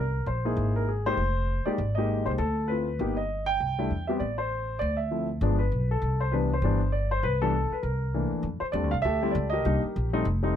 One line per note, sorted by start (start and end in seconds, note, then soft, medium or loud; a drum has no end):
0.00 0.25 C2 medium
0.00 0.25 A#4 medium
0.26 0.55 A#1 medium
0.26 0.72 C5 medium
0.45 0.85 A#3 medium
0.45 0.85 D#4 soft
0.45 0.85 E4 soft
0.45 0.85 G#4 medium
0.57 1.14 G#1 medium
0.76 0.88 A#4 medium
0.89 1.05 G#4 medium
1.06 1.17 G#3 medium
1.06 1.17 A#3 medium
1.06 1.17 D#4 soft
1.06 1.17 G4 medium
1.06 1.68 C5 loud
1.17 1.63 F1 medium
1.66 1.77 G#3 medium
1.66 1.77 A#3 medium
1.66 1.77 D#4 medium
1.66 1.77 G4 medium
1.66 1.97 D5 medium
1.66 muted upright bass stroke soft
1.78 2.23 G#1 medium
1.95 2.37 G#3 medium
1.95 2.37 A#3 medium
1.95 2.37 D#4 medium
1.95 2.37 G4 medium
1.95 2.24 D#5 medium
2.26 2.38 C2 medium
2.26 2.31 C5 medium
2.38 2.96 D2 medium
2.38 2.70 A4 medium
2.68 2.86 A3 soft
2.68 2.86 C4 soft
2.68 2.86 E4 soft
2.68 2.86 F4 medium
2.68 3.14 B4 medium
2.99 3.57 G1 medium
2.99 3.16 A#3 medium
2.99 3.16 B3 medium
2.99 3.16 D#4 medium
2.99 3.16 G4 medium
3.17 3.45 D#5 medium
3.46 4.04 G5 loud
3.60 3.88 C2 medium
3.79 3.89 G3 medium
3.79 3.89 A3 soft
3.79 3.90 D4 medium
3.79 3.89 E4 medium
3.90 4.18 E2 medium
4.07 4.19 G3 medium
4.07 4.20 B3 medium
4.07 4.20 C4 medium
4.07 4.20 G4 medium
4.07 4.12 E5 medium
4.19 4.78 A1 medium
4.19 4.39 D5 medium
4.38 4.82 C5 medium
4.79 5.39 D2 medium
4.79 4.97 D5 medium
4.97 5.26 E5 medium
5.11 5.27 F3 soft
5.11 5.28 A3 soft
5.11 5.28 C4 soft
5.11 5.28 E4 soft
5.41 5.69 G1 medium
5.41 5.58 F3 medium
5.41 5.58 G#3 medium
5.41 5.58 B3 soft
5.41 5.58 D4 medium
5.59 5.87 B4 medium
5.72 6.00 B1 medium
5.91 6.22 A4 medium
6.02 6.59 C2 medium
6.20 6.33 C5 medium
6.32 6.49 E3 soft
6.32 6.49 G3 soft
6.32 6.49 B3 soft
6.32 6.49 D4 medium
6.32 6.53 B4 medium
6.53 6.90 C5 medium
6.62 7.20 G1 medium
6.62 6.79 E3 medium
6.62 6.79 G3 medium
6.62 6.80 B3 medium
6.62 6.80 D4 medium
6.92 7.09 D5 medium
7.11 7.22 C5 medium
7.23 7.68 C2 medium
7.23 7.40 B4 medium
7.42 7.52 E3 medium
7.42 7.52 G3 medium
7.42 7.53 B3 soft
7.42 7.53 D4 medium
7.42 7.74 A4 medium
7.71 7.82 B4 medium
7.71 muted upright bass stroke soft
7.83 8.28 C2 medium
7.83 8.28 A#4 medium
8.14 8.44 E3 medium
8.14 8.44 A3 soft
8.14 8.44 A#3 soft
8.14 8.44 D4 medium
8.32 muted upright bass stroke soft
8.43 8.60 F2 medium
8.60 8.65 C5 medium
8.60 muted upright bass stroke soft
8.72 8.84 E2 medium
8.72 8.90 G3 medium
8.72 8.90 A3 soft
8.72 8.90 C4 medium
8.72 8.91 D4 medium
8.72 8.92 D5 medium
8.84 8.93 D2 soft
8.91 9.03 C2 medium
8.91 8.96 F5 medium
9.02 9.33 D2 medium
9.02 9.51 G4 medium
9.02 9.61 A4 medium
9.02 9.31 E5 loud
9.23 9.33 G3 medium
9.23 9.33 A3 medium
9.23 9.33 C4 medium
9.23 9.33 E4 medium
9.31 9.64 C#2 medium
9.31 9.52 D5 medium
9.50 10.09 G4 medium
9.50 10.09 A#4 medium
9.50 9.79 D#5 medium
9.65 9.82 C2 medium
9.65 9.81 G3 medium
9.65 9.81 A#3 medium
9.65 9.81 D4 soft
9.65 9.81 D#4 medium
9.84 muted upright bass stroke soft
9.96 10.25 A#1 medium
10.13 10.24 G3 medium
10.13 10.24 A3 medium
10.13 10.24 C4 medium
10.13 10.24 D#4 medium
10.25 10.54 F1 medium
10.43 10.56 G3 medium
10.43 10.56 A3 medium
10.43 10.56 C4 medium
10.43 10.56 D#4 medium